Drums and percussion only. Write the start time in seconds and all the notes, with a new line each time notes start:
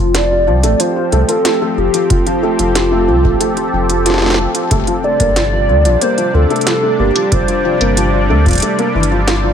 0.15 snare, closed hi-hat
0.63 closed hi-hat
0.80 closed hi-hat
1.12 closed hi-hat
1.29 closed hi-hat
1.45 snare, closed hi-hat
1.94 closed hi-hat
2.10 kick, closed hi-hat
2.26 closed hi-hat
2.59 closed hi-hat
2.75 snare, closed hi-hat
3.24 kick
3.41 closed hi-hat
3.57 closed hi-hat
3.90 closed hi-hat
4.06 snare, closed hi-hat
4.10 snare
4.14 snare
4.18 snare
4.22 snare
4.26 snare
4.30 snare
4.34 snare
4.55 closed hi-hat
4.71 kick, closed hi-hat
4.87 closed hi-hat
5.20 kick, closed hi-hat
5.36 snare, closed hi-hat
5.85 closed hi-hat
6.01 closed hi-hat
6.18 closed hi-hat
6.50 closed hi-hat
6.56 closed hi-hat
6.61 closed hi-hat
6.67 snare, closed hi-hat
7.16 closed hi-hat
7.32 kick, closed hi-hat
7.48 closed hi-hat
7.81 closed hi-hat
7.97 closed hi-hat
8.46 kick, closed hi-hat
8.48 kick, closed hi-hat
8.51 kick, closed hi-hat
8.53 kick, closed hi-hat
8.55 kick, closed hi-hat
8.58 kick, closed hi-hat
8.60 kick, closed hi-hat
8.62 closed hi-hat
8.79 closed hi-hat
9.03 closed hi-hat
9.28 snare, closed hi-hat